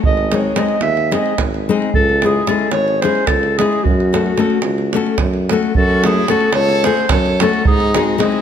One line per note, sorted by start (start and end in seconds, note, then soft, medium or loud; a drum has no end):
0.04 0.50 G#1 medium
0.04 0.36 D#5 loud
0.04 davul low medium
0.17 davul high soft
0.32 0.52 G#3 medium
0.32 0.52 C4 soft
0.32 0.52 D#4 soft
0.32 0.53 G#4 medium
0.32 0.60 C#5 medium
0.32 davul high medium
0.56 0.76 G#3 medium
0.56 0.76 C4 medium
0.56 0.76 D#4 medium
0.56 0.77 G#4 medium
0.56 0.82 D#5 medium
0.56 davul high medium
0.68 davul high soft
0.81 1.15 D#2 medium
0.81 1.14 E5 medium
0.81 davul high medium
0.97 davul high soft
1.11 1.32 G#3 medium
1.11 1.32 C4 medium
1.11 1.33 D#4 medium
1.11 1.33 G#4 medium
1.11 1.38 D#5 medium
1.11 davul high medium
1.26 davul high soft
1.38 1.72 G#1 medium
1.38 davul high medium
1.38 davul low medium
1.54 davul high soft
1.69 1.89 G#3 medium
1.69 1.89 C4 medium
1.69 1.90 D#4 medium
1.69 1.90 G#4 medium
1.82 davul high soft
1.94 2.41 C#2 loud
1.94 2.27 A4 loud
1.94 davul low medium
2.09 davul high soft
2.22 2.43 G#3 medium
2.22 2.43 C#4 soft
2.22 2.43 E4 medium
2.22 2.50 G#4 medium
2.22 2.44 G#4 medium
2.22 davul high medium
2.47 2.67 G#3 medium
2.47 2.67 C#4 medium
2.47 2.67 E4 medium
2.47 2.68 G#4 medium
2.47 2.72 A4 medium
2.47 davul high medium
2.59 davul high soft
2.71 3.06 G#1 medium
2.71 3.01 C#5 loud
2.71 davul high medium
2.88 davul high soft
3.02 3.23 G#3 medium
3.02 3.23 C#4 medium
3.02 3.24 E4 soft
3.02 3.24 G#4 medium
3.02 3.29 C5 medium
3.02 davul high medium
3.15 davul high soft
3.27 3.62 C#2 medium
3.27 3.59 A4 medium
3.27 davul high medium
3.27 davul low medium
3.43 davul high soft
3.58 3.80 G#3 medium
3.58 3.80 C#4 medium
3.58 3.80 E4 medium
3.58 3.85 G#4 medium
3.58 3.80 G#4 medium
3.58 davul high medium
3.73 davul high soft
3.83 4.32 F#2 loud
3.83 5.50 F#4 medium
3.83 davul low medium
4.00 davul high soft
4.13 4.33 A3 medium
4.13 4.33 C#4 soft
4.13 4.33 F#4 medium
4.13 4.34 A4 medium
4.13 davul high medium
4.26 davul high soft
4.37 4.57 A3 medium
4.37 4.58 C#4 medium
4.37 4.58 F#4 medium
4.37 4.58 A4 medium
4.37 davul high soft
4.50 davul high soft
4.62 4.96 C#2 medium
4.62 davul high medium
4.78 davul high soft
4.93 5.14 A3 medium
4.93 5.15 C#4 medium
4.93 5.15 F#4 medium
4.93 5.15 A4 medium
4.93 davul high medium
5.07 davul high soft
5.18 5.53 F#2 medium
5.18 davul high medium
5.18 davul low medium
5.34 davul high soft
5.49 5.71 A3 medium
5.49 5.71 C#4 medium
5.49 5.71 F#4 medium
5.49 5.72 A4 medium
5.49 davul high medium
5.63 davul high soft
5.75 6.22 F#2 loud
5.75 6.07 A4 loud
5.75 davul low medium
5.79 6.08 F#4 medium
5.90 davul high soft
6.04 6.24 A3 medium
6.04 6.24 C#4 medium
6.04 6.32 E4 medium
6.04 6.25 F#4 medium
6.04 6.31 G#4 medium
6.04 6.25 A4 medium
6.04 davul high medium
6.28 6.48 A3 medium
6.28 6.49 C#4 medium
6.28 6.53 F#4 medium
6.28 6.49 F#4 medium
6.28 6.54 A4 medium
6.28 6.50 A4 medium
6.28 davul high medium
6.40 davul high soft
6.53 6.87 C#2 loud
6.53 6.86 A4 medium
6.53 6.87 C#5 loud
6.53 davul high medium
6.69 davul high soft
6.84 7.05 A3 medium
6.84 7.05 C#4 medium
6.84 7.06 F#4 medium
6.84 7.08 G#4 medium
6.84 7.06 A4 medium
6.84 7.10 C5 loud
6.84 davul high medium
6.97 davul high soft
7.09 7.44 F#2 medium
7.09 7.41 A4 medium
7.09 7.43 C#5 medium
7.09 davul high medium
7.09 davul low medium
7.26 davul high soft
7.40 7.61 A3 medium
7.40 7.62 C#4 medium
7.40 7.65 F#4 medium
7.40 7.62 F#4 medium
7.40 7.67 A4 medium
7.40 7.62 A4 medium
7.40 davul high medium
7.53 davul high soft
7.65 8.13 G#2 loud
7.65 7.95 D#4 medium
7.65 7.97 G#4 medium
7.65 davul low medium
7.80 davul high soft
7.94 8.15 G#3 medium
7.94 8.15 C4 soft
7.94 8.20 D#4 medium
7.94 8.15 D#4 soft
7.94 8.21 F#4 medium
7.94 8.15 G#4 medium
7.94 davul high medium
8.18 8.39 G#3 medium
8.18 8.39 C4 medium
8.18 8.39 D#4 medium
8.18 8.41 E4 medium
8.18 8.41 G#4 medium
8.18 8.39 G#4 medium
8.18 davul high medium
8.32 davul high soft